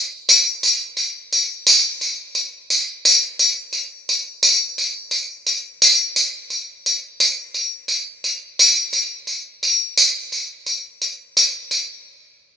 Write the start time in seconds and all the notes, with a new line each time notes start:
0.29 tambourine
0.63 tambourine
0.97 tambourine
1.33 tambourine
1.67 tambourine
2.01 tambourine
2.35 tambourine
2.70 tambourine
3.05 tambourine
3.39 tambourine
3.73 tambourine
4.09 tambourine
4.43 tambourine
4.78 tambourine
5.11 tambourine
5.47 tambourine
5.82 tambourine
6.16 tambourine
6.50 tambourine
6.86 tambourine
7.20 tambourine
7.54 tambourine
7.88 tambourine
8.24 tambourine
8.59 tambourine
8.93 tambourine
9.27 tambourine
9.63 tambourine
9.97 tambourine
10.32 tambourine
10.66 tambourine
11.02 tambourine
11.37 tambourine
11.71 tambourine